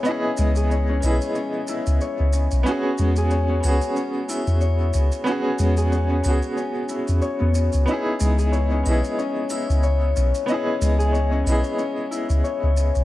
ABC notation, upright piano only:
X:1
M:4/4
L:1/8
Q:"Swing 16ths" 1/4=92
K:C#m
V:1 name="Upright piano"
[B,EGd]3 [B,EGd]4- [B,EGd] | [B,CFG]3 [B,CFG]4- [B,CFG] | [B,CFG]3 [B,CFG]4- [B,CFG] | [B,DEG]3 [B,EGd]4- [B,EGd] |
[B,EGd]3 [B,EGd]4- [B,EGd] |]